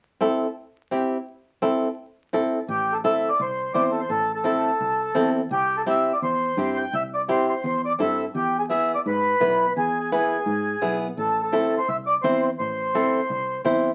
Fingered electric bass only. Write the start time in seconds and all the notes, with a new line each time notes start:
2.68 A1
3.39 C2
3.75 E2
4.09 A1
4.80 C2
5.16 E2
5.51 C2
6.22 E2
6.57 G2
6.93 C2
7.64 E2
8.00 G2
8.35 E2
9.06 G#2
9.41 B1
9.76 E2
10.46 G#2
10.82 B1
11.17 A1
11.88 C2
12.24 E2
12.60 A1
13.30 C2
13.65 E2